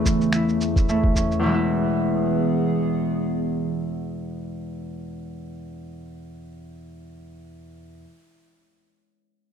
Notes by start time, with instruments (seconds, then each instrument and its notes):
Already playing: ambient pad E2 C#3 E3 A3, harp E3 A3 C#4 E4
0.06 kick, shaker
0.21 shaker
0.33 harp E4, finger snap, shaker
0.49 shaker
0.61 shaker
0.76 kick, shaker
0.89 harp A3 C#4 E4, shaker
1.04 kick
1.15 harp C#4, kick, shaker
1.32 shaker
1.39 harp E2 B2, ambient pad E3
1.44 harp E3, ambient pad B3 G#4
1.49 harp G#3 B3
1.54 harp E4